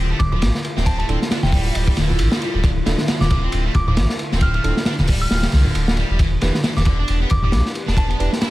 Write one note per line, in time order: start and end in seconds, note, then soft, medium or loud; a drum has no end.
0.00 0.14 D1 medium
0.00 6.15 D3 medium
0.00 6.15 A3 medium
0.00 6.15 E4 medium
0.00 6.16 F4 medium
0.11 0.18 A3 medium
0.19 0.44 D1 loud
0.19 0.28 D6 medium
0.19 kick medium
0.19 ride medium
0.19 high conga medium
0.32 0.40 F3 medium
0.32 0.38 D6 medium
0.32 low conga medium
0.42 0.51 A1 loud
0.42 snare loud
0.42 ride loud
0.55 snare medium
0.64 ride medium
0.77 1.04 D1 medium
0.77 0.98 C4 loud
0.77 snare soft
0.86 0.94 A5 medium
0.86 kick loud
0.86 ride medium
0.99 1.07 A3 medium
0.99 1.05 A5 medium
0.99 ride soft
1.08 1.17 D1 loud
1.08 1.19 C4 medium
1.08 1.23 D4 medium
1.08 1.23 E4 medium
1.08 1.23 F4 medium
1.08 1.23 A4 loud
1.08 ride medium
1.22 snare medium
1.31 1.37 D4 medium
1.31 snare loud
1.31 ride medium
1.43 1.70 D1 loud
1.43 1.52 C3 loud
1.43 1.75 G5 medium
1.43 snare soft
1.43 high conga medium
1.52 1.97 G3 medium
1.52 kick loud
1.52 open hi-hat medium
1.75 1.91 D1 medium
1.75 ride loud
1.87 kick medium
1.97 2.21 D1 loud
1.97 2.41 D3 medium
1.97 snare soft
1.97 ride medium
1.97 high conga medium
2.10 low conga medium
2.19 2.28 A1 loud
2.19 ride loud
2.32 snare loud
2.42 2.53 G3 medium
2.42 ride medium
2.54 2.81 D1 medium
2.54 2.63 G3 loud
2.64 2.70 D3 medium
2.64 kick loud
2.64 ride medium
2.86 2.95 D1 loud
2.86 2.97 D3 medium
2.86 3.01 D4 medium
2.86 3.01 E4 medium
2.86 3.01 F4 medium
2.86 3.01 A4 loud
2.86 snare medium
2.86 ride medium
2.98 snare medium
3.08 3.15 D3 medium
3.08 snare loud
3.08 ride medium
3.21 3.48 D1 loud
3.21 3.29 D3 medium
3.21 3.27 D6 medium
3.21 snare medium
3.21 high conga medium
3.30 3.42 C3 medium
3.30 3.39 D6 medium
3.30 kick medium
3.30 ride medium
3.43 3.64 C4 loud
3.52 3.69 D1 loud
3.52 ride medium
3.65 3.73 A3 medium
3.75 3.99 D1 loud
3.75 3.83 D6 medium
3.75 kick medium
3.75 ride medium
3.75 high conga medium
3.88 3.96 F3 medium
3.88 3.94 D6 medium
3.88 low conga medium
3.97 4.06 A1 loud
3.97 snare loud
3.97 ride medium
4.09 snare medium
4.19 ride medium
4.32 4.59 D1 medium
4.32 4.53 C4 loud
4.32 snare soft
4.41 4.50 F6 medium
4.41 kick loud
4.41 ride medium
4.54 4.62 A3 medium
4.54 4.61 F6 medium
4.54 ride soft
4.64 4.73 D1 loud
4.64 4.74 C4 medium
4.64 4.79 D4 medium
4.64 4.79 E4 medium
4.64 4.79 F4 medium
4.64 4.79 A4 loud
4.64 ride medium
4.77 snare medium
4.85 4.92 D4 medium
4.85 snare loud
4.85 ride medium
4.98 5.26 D1 loud
4.98 5.07 C3 loud
4.98 snare soft
4.98 high conga medium
5.07 5.52 G3 medium
5.07 kick loud
5.07 open hi-hat medium
5.21 5.53 F6 medium
5.31 5.47 D1 medium
5.31 snare loud
5.31 ride medium
5.43 snare loud
5.43 ride medium
5.52 5.65 C2 medium
5.52 5.96 D3 medium
5.52 snare soft
5.52 ride medium
5.52 high conga medium
5.65 5.73 D1 soft
5.65 low conga medium
5.75 6.04 D1 medium
5.75 ride medium
5.88 snare loud
5.97 6.09 G3 medium
5.97 ride medium
6.10 6.37 E1 medium
6.10 6.19 G3 medium
6.19 8.50 E3 medium
6.19 6.26 E3 medium
6.19 8.50 B3 medium
6.19 8.50 D4 medium
6.19 8.50 G4 medium
6.19 kick loud
6.19 ride medium
6.41 6.51 E1 loud
6.41 6.52 E3 medium
6.41 6.56 D4 medium
6.41 6.56 E4 medium
6.41 6.56 G4 medium
6.41 6.56 B4 loud
6.41 snare soft
6.41 ride medium
6.54 snare medium
6.64 6.70 E3 medium
6.64 snare loud
6.64 ride medium
6.77 7.04 E1 loud
6.77 6.85 E3 medium
6.77 6.83 D6 medium
6.77 snare medium
6.77 high conga medium
6.85 6.98 D3 medium
6.85 6.94 D6 medium
6.85 kick medium
6.85 ride medium
6.99 7.20 D4 loud
7.08 7.25 E1 medium
7.08 ride medium
7.21 7.29 B3 medium
7.30 7.54 E1 loud
7.30 7.39 D6 medium
7.30 kick loud
7.30 ride medium
7.30 high conga medium
7.42 7.51 G3 medium
7.42 7.50 D6 medium
7.42 low conga medium
7.52 7.62 B1 loud
7.52 snare loud
7.52 ride medium
7.66 snare medium
7.75 ride medium
7.88 8.15 E1 medium
7.88 8.09 D4 loud
7.88 snare soft
7.97 8.06 A5 medium
7.97 kick loud
7.97 ride medium
8.10 8.18 B3 medium
8.10 8.16 A5 medium
8.10 ride soft
8.20 8.28 E1 medium
8.20 8.34 D4 medium
8.20 8.30 D4 medium
8.20 8.34 E4 medium
8.20 8.34 G4 medium
8.20 8.34 B4 medium
8.20 ride medium
8.33 snare medium
8.41 8.48 E4 medium
8.41 snare loud
8.41 ride loud